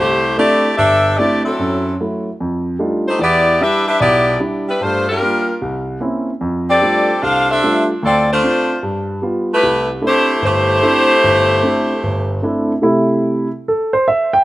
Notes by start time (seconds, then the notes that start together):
0.00 C2 A3 E4 G4 C5
0.37 A3 C4 D4 E4 G4 D5
0.77 G1 D4 G4 A4 E5
1.17 A3 C4 D4 E4 G4 D5
1.45 F#3 C4 E4 A4
1.59 F#2
2.00 F#3 A3 E4
2.40 F2
2.79 G3 A3 D4 D#4 F4
3.08 A3 D#4 G4 C5
3.19 E2 B3 E4 G4 D5
3.60 G3 D4 E4 G4 B4 E5
3.87 D4 G4 B4 E5
4.01 B1 B3 E4 G4 D5
4.40 G3 D4 E4
4.68 G3 D4 E4 B4
4.81 G2 A3 D4 F4 C5
5.09 G3 D4 F4 A#4
5.21 G3 A#3 F4
5.62 C2
6.00 A#3 C4 C#4 E4
6.41 F2
6.70 C4 G4 A4 D5
6.81 G3 A3 D4 F4
7.22 C2 D4 A4 C5 F5
7.50 D4 A4 C5 E5
7.63 G3 A3 D4 F4
8.03 D2 C4 F4 A4 D5
8.32 A3 D4 F4 C5
8.43 C4 D4 F4
8.83 G2
9.22 G3 B3 F4
9.54 A3 E4 G4 B4
9.63 C2
10.02 A3 C4 D4 E4
10.07 A3 E4 G4 C5
10.42 G1 E4 C5
10.46 A3 G4
10.83 A3 C4 D4 E4
11.23 G1
11.63 A3 C4 D4 E4
12.03 G1
12.42 A3 C4 D4 E4
12.82 C3 A3 E4
13.68 A4
13.93 C5
14.08 E5
14.33 G5